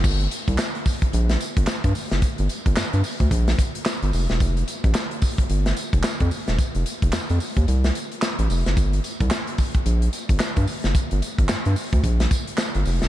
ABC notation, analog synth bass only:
X:1
M:4/4
L:1/16
Q:"Swing 16ths" 1/4=110
K:Gm
V:1 name="Analog synth bass" clef=bass
G,,,2 z C,, z4 B,,,2 z G,,, z G,, z ^F,,, | z G,,, z G,,, G,, G,, z D,, B,,,2 z3 G,,, F,,, =E,,, | F,,,2 z A,,, z4 G,,,2 z F,,, z F,, z =E,,, | z F,,, z F,,, F,, F,, z E,, C,,2 z3 A,,, F,,, ^F,,, |
G,,,2 z C,, z4 B,,,2 z G,,, z G,, z ^F,,, | z G,,, z G,,, G,, G,, z D,, B,,,2 z3 G,,, F,,, =E,,, |]